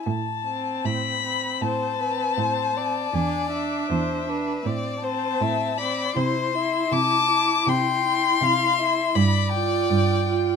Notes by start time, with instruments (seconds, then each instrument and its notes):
0.06 cello A2, violin A5
0.47 viola C4
0.85 cello A2, violin B5
1.24 viola C4
1.61 cello A2, violin C5 A5
1.99 viola C4, violin B4
2.38 cello A2, violin C5
2.76 viola C4, violin D5
3.14 cello E2, viola D4, violin G#5
3.52 viola D4, violin E5
3.90 cello E2, violin C5
4.27 viola D4, violin B4
4.65 cello A2, viola C4, violin D5
5.01 viola C4, violin C5 A5
5.41 cello A2, violin E5
5.77 viola C4, violin D5 B5
6.16 cello C3, viola E4, violin C5 C6
6.55 viola E4, violin E5
6.92 cello C3, violin A5 D6
7.31 viola E4
7.67 cello C3, violin G5 C6
8.05 viola E4
8.41 cello C3, violin F5
8.79 viola E4, violin E5
9.15 cello G2, violin D5 B5
9.53 viola F4, violin G5
9.91 cello G2
10.28 viola F4